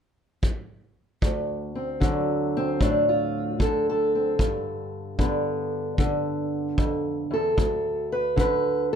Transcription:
0.43 kick medium
1.22 4.39 D2 medium
1.22 kick medium
1.75 2.54 C4 soft
2.00 3.58 D3 medium
2.00 4.39 F#3 soft
2.00 kick medium
2.57 3.61 C4 medium
2.80 3.60 A2 medium
2.80 3.08 D4 medium
2.80 kick medium
3.09 3.61 F4 medium
3.59 5.17 D3 medium
3.59 3.88 A4 medium
3.59 kick medium
3.90 7.06 A4 medium
4.15 4.37 C4 soft
4.39 6.78 G2 medium
4.39 kick medium
5.19 5.99 D3 medium
5.19 7.55 B3 soft
5.19 kick medium
5.98 7.55 D3 medium
5.98 kick medium
6.78 7.30 F2 medium
6.78 kick medium
7.31 7.57 E2 medium
7.31 8.12 A4 medium
7.57 8.95 D2 medium
7.57 kick medium
8.12 8.38 B4 medium
8.36 8.95 D3 medium
8.36 8.92 B4 medium
8.36 kick medium

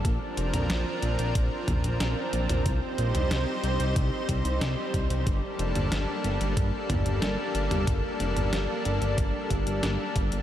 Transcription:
0.05 0.19 A#1 loud
0.05 2.63 F3 medium
0.05 5.23 C4 medium
0.05 2.63 D4 medium
0.05 2.63 A#4 medium
0.05 kick loud
0.05 closed hi-hat medium
0.37 0.52 F1 medium
0.37 closed hi-hat medium
0.54 0.68 A#1 medium
0.54 closed hi-hat medium
0.54 mid tom medium
0.70 0.85 A#1 loud
0.70 snare loud
0.70 closed hi-hat medium
1.02 1.17 A#1 medium
1.02 closed hi-hat medium
1.19 1.34 A#1 medium
1.19 closed hi-hat medium
1.35 1.50 A#1 loud
1.35 kick loud
1.35 closed hi-hat medium
1.68 1.83 A#1 medium
1.68 kick medium
1.68 closed hi-hat medium
1.68 mid tom medium
1.84 1.99 A#1 medium
1.84 closed hi-hat medium
2.00 2.15 A#1 loud
2.00 snare loud
2.00 closed hi-hat medium
2.33 2.48 A#1 medium
2.33 closed hi-hat medium
2.49 2.64 A#1 medium
2.49 closed hi-hat medium
2.49 mid tom medium
2.66 2.80 C2 loud
2.66 10.42 G3 medium
2.66 5.24 D#4 medium
2.66 5.24 C5 medium
2.66 kick loud
2.66 closed hi-hat medium
2.98 3.13 A#1 medium
2.98 closed hi-hat medium
3.15 3.29 C2 medium
3.15 closed hi-hat medium
3.15 mid tom medium
3.31 3.46 C2 loud
3.31 snare loud
3.31 closed hi-hat medium
3.64 3.78 C2 medium
3.64 closed hi-hat medium
3.80 3.94 C2 medium
3.80 closed hi-hat medium
3.96 4.11 C2 loud
3.96 kick loud
3.96 closed hi-hat medium
4.29 4.43 C2 medium
4.29 kick medium
4.29 closed hi-hat medium
4.45 4.60 C2 medium
4.45 closed hi-hat medium
4.61 4.76 C2 loud
4.61 snare loud
4.61 closed hi-hat medium
4.94 5.09 C2 medium
4.94 kick medium
4.94 closed hi-hat medium
5.10 5.25 C2 medium
5.10 closed hi-hat medium
5.27 5.41 G1 loud
5.27 10.42 A#3 medium
5.27 10.42 D4 medium
5.27 10.42 A4 medium
5.27 kick loud
5.27 closed hi-hat medium
5.59 5.74 F1 medium
5.59 closed hi-hat medium
5.75 5.90 G1 medium
5.75 closed hi-hat medium
5.75 mid tom medium
5.92 6.06 G1 medium
5.92 snare loud
5.92 closed hi-hat medium
6.24 6.39 G1 medium
6.24 closed hi-hat medium
6.41 6.55 G1 medium
6.41 closed hi-hat medium
6.57 6.72 G1 loud
6.57 kick loud
6.57 closed hi-hat medium
6.90 7.04 G1 medium
6.90 kick medium
6.90 closed hi-hat medium
6.90 mid tom loud
7.06 7.21 G1 medium
7.06 closed hi-hat medium
7.22 7.37 G1 loud
7.22 snare loud
7.22 closed hi-hat medium
7.55 7.69 G1 medium
7.55 closed hi-hat medium
7.71 7.86 G1 medium
7.71 closed hi-hat medium
7.71 mid tom medium
7.87 8.02 G1 loud
7.87 kick loud
7.87 closed hi-hat medium
8.20 8.35 F1 medium
8.20 closed hi-hat medium
8.36 8.51 G1 medium
8.36 closed hi-hat medium
8.36 mid tom medium
8.53 8.67 G1 medium
8.53 snare loud
8.53 closed hi-hat medium
8.85 9.00 G1 medium
8.85 closed hi-hat medium
9.02 9.16 G1 medium
9.02 closed hi-hat medium
9.18 9.33 G1 loud
9.18 kick loud
9.18 closed hi-hat medium
9.50 9.65 G1 loud
9.50 kick medium
9.50 closed hi-hat medium
9.67 9.82 G1 medium
9.67 closed hi-hat medium
9.83 9.98 G1 loud
9.83 snare loud
9.83 closed hi-hat medium
10.16 10.30 G1 medium
10.16 kick medium
10.16 closed hi-hat medium
10.32 10.42 G1 medium
10.32 closed hi-hat medium

